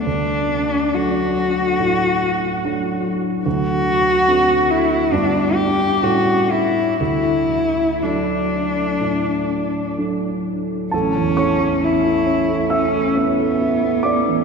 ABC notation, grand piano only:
X:1
M:4/4
L:1/16
Q:1/4=67
K:D
V:1 name="Grand piano"
z16 | z16 | z16 | [K:A] [Aa]2 [cc']6 [ee']6 [dd']2 |]
V:2 name="Grand piano"
D,,4 [F,A,D]4 A,,4 [F,A,D]4 | D,,4 [A,=CD]4 [G,,G,B,D]4 [A,,G,A,^C]4 | D,,4 [F,A,D]4 A,,4 [F,A,D]4 | [K:A] A,,, E,, E, A, C E C A, C A, C A, E C A, E, |]